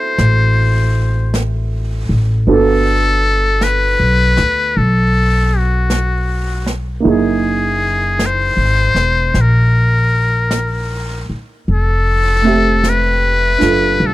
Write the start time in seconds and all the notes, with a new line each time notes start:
Already playing: C4 E4 F#4 A4 C5
0.18 A1, brush sweep, snare
1.34 brush sweep, snare, hi-hat pedal
2.09 A1
2.47 G1 B3 D4 F#4 A4, brush sweep
2.54 A4
3.61 B4, brush sweep, snare, hi-hat pedal
4.00 B1
4.37 D2, snare
4.75 B1 A4, brush sweep
5.57 F#4
5.90 brush sweep, snare, hi-hat pedal
6.66 snare
7.00 A#3 D#4 E4
7.05 F#1 G#4, brush sweep
7.11 G#4
8.19 brush sweep, snare, hi-hat pedal
8.26 C5
8.57 G#1
8.95 E1, snare
9.34 A#1, brush sweep, snare
9.41 A#4
10.51 brush sweep, snare, hi-hat pedal
11.30 muted upright bass stroke
11.68 F1 A4, brush sweep
12.42 A3 C4 E5
12.47 G4
12.84 brush sweep, snare, hi-hat pedal
12.89 B4
13.58 F#1 D4 F4 A4, snare
13.99 C2, brush sweep
14.06 A4